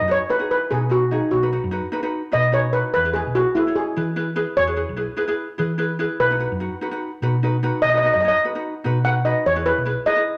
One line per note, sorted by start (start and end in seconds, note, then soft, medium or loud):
0.01 0.17 F#2 medium
0.08 0.22 D#4 medium
0.08 0.22 F#4 medium
0.08 0.22 B4 medium
0.08 0.30 C#5 medium
0.29 0.37 D#4 medium
0.29 0.37 F#4 medium
0.29 0.50 B4 medium
0.29 0.37 B4 medium
0.39 0.59 D#4 medium
0.39 0.59 F#4 medium
0.39 0.59 G#4 medium
0.51 0.72 B4 medium
0.70 1.19 B2 medium
0.70 0.84 D#4 medium
0.70 0.84 F#4 medium
0.70 0.90 G#4 medium
0.70 0.84 B4 medium
0.90 1.03 D#4 medium
0.90 1.04 F#4 medium
0.90 1.13 F#4 medium
0.90 1.04 B4 medium
1.11 1.30 D#4 medium
1.11 1.33 D#4 medium
1.11 1.30 F#4 medium
1.11 1.31 G#4 medium
1.31 1.57 B1 medium
1.31 1.51 F#4 medium
1.43 1.49 D#4 medium
1.43 1.49 F#4 medium
1.43 1.49 B4 medium
1.52 1.65 D#4 medium
1.52 1.65 F#4 medium
1.52 1.66 B4 medium
1.64 1.80 F#2 loud
1.71 1.85 D#4 medium
1.71 1.85 F#4 medium
1.71 1.86 B4 medium
1.92 1.99 D#4 medium
1.92 1.99 F#4 medium
1.92 2.00 B4 medium
2.03 2.22 D#4 medium
2.03 2.22 F#4 medium
2.03 2.22 B4 medium
2.32 2.82 B2 medium
2.32 2.46 D#4 medium
2.32 2.46 F#4 medium
2.32 2.46 B4 medium
2.32 2.55 D#5 medium
2.52 2.66 D#4 medium
2.52 2.66 F#4 medium
2.52 2.67 B4 medium
2.52 2.75 C#5 medium
2.73 2.92 D#4 medium
2.73 2.93 F#4 medium
2.73 2.93 B4 medium
2.94 3.20 E2 medium
2.94 3.15 B4 loud
3.05 3.11 E4 medium
3.05 3.11 G#4 medium
3.05 3.12 B4 medium
3.13 3.28 E4 medium
3.13 3.35 G#4 medium
3.13 3.28 G#4 medium
3.13 3.28 B4 medium
3.27 3.42 B1 loud
3.35 3.48 E4 medium
3.35 3.54 F#4 medium
3.35 3.49 G#4 medium
3.35 3.49 B4 medium
3.55 3.74 E4 medium
3.55 3.62 E4 medium
3.55 3.63 G#4 medium
3.55 3.63 B4 medium
3.67 3.85 E4 medium
3.67 3.85 G#4 medium
3.67 3.86 C#5 medium
3.75 3.85 G#4 medium
3.96 4.45 E3 medium
3.96 4.09 E4 medium
3.96 4.10 G#4 medium
3.96 4.10 B4 medium
4.16 4.29 E4 medium
4.16 4.29 G#4 medium
4.16 4.30 B4 medium
4.36 4.55 E4 medium
4.36 4.55 G#4 medium
4.36 4.55 B4 medium
4.57 4.83 E2 medium
4.57 5.14 C#5 loud
4.67 4.74 E4 medium
4.67 4.74 G#4 medium
4.67 4.74 B4 medium
4.76 4.90 E4 medium
4.76 4.90 G#4 medium
4.76 4.90 B4 medium
4.89 5.05 B1 loud
4.96 5.10 E4 medium
4.96 5.10 G#4 medium
4.96 5.11 B4 medium
5.16 5.24 E4 medium
5.16 5.24 G#4 medium
5.16 5.25 B4 medium
5.28 5.47 E4 medium
5.28 5.47 G#4 medium
5.28 5.47 B4 medium
5.58 6.07 E3 medium
5.58 5.72 E4 medium
5.58 5.72 G#4 medium
5.58 5.72 B4 medium
5.78 5.92 E4 medium
5.78 5.92 G#4 medium
5.78 5.92 B4 medium
5.99 6.18 E4 medium
5.99 6.18 G#4 medium
5.99 6.19 B4 medium
6.20 6.45 B1 medium
6.20 6.77 B4 loud
6.31 6.37 D#4 medium
6.31 6.37 F#4 medium
6.31 6.37 B4 medium
6.40 6.53 D#4 medium
6.40 6.53 F#4 medium
6.40 6.54 B4 medium
6.52 6.68 F#2 loud
6.60 6.73 D#4 medium
6.60 6.74 F#4 medium
6.60 6.74 B4 medium
6.81 6.88 D#4 medium
6.81 6.88 F#4 medium
6.81 6.89 B4 medium
6.91 7.10 D#4 medium
6.91 7.10 F#4 medium
6.91 7.11 B4 medium
7.22 7.70 B2 medium
7.22 7.35 D#4 medium
7.22 7.35 F#4 medium
7.22 7.36 B4 medium
7.43 7.56 D#4 medium
7.43 7.56 F#4 medium
7.43 7.56 B4 medium
7.63 7.81 D#4 medium
7.63 7.82 F#4 medium
7.63 7.82 B4 medium
7.82 8.08 B1 medium
7.82 7.89 D#5 loud
7.90 7.96 D#5 medium
7.94 8.00 D#4 medium
7.94 8.00 F#4 medium
7.94 8.00 B4 medium
7.94 8.04 D#5 medium
8.04 8.17 D#4 medium
8.04 8.17 F#4 medium
8.04 8.17 B4 medium
8.04 8.12 D#5 medium
8.13 8.31 F#2 medium
8.13 8.19 D#5 medium
8.21 8.37 D#4 medium
8.21 8.37 F#4 medium
8.21 8.27 D#5 medium
8.25 8.37 C#5 medium
8.25 8.36 D#5 medium
8.44 8.51 D#4 medium
8.44 8.51 F#4 medium
8.44 8.51 B4 medium
8.55 8.73 D#4 medium
8.55 8.74 F#4 medium
8.55 8.74 B4 medium
8.84 9.33 B2 medium
8.84 8.97 D#4 medium
8.84 8.98 F#4 medium
8.84 8.98 B4 medium
9.05 9.18 D#4 medium
9.05 9.18 F#4 medium
9.05 9.19 B4 medium
9.05 9.24 F#5 medium
9.25 9.44 D#4 medium
9.25 9.44 F#4 medium
9.25 9.44 B4 medium
9.25 9.34 D#5 medium
9.46 9.71 E2 medium
9.46 9.65 C#5 medium
9.56 9.62 E4 medium
9.56 9.62 G#4 medium
9.56 9.62 B4 medium
9.66 9.79 E4 medium
9.66 9.79 G#4 medium
9.66 10.08 B4 medium
9.66 9.79 B4 medium
9.78 9.94 B1 loud
9.85 9.99 E4 medium
9.85 9.99 G#4 medium
9.85 9.99 B4 medium
10.06 10.13 E4 medium
10.06 10.13 G#4 medium
10.06 10.14 B4 medium
10.06 10.37 D#5 loud
10.16 10.35 E4 medium
10.16 10.36 G#4 medium
10.16 10.36 B4 medium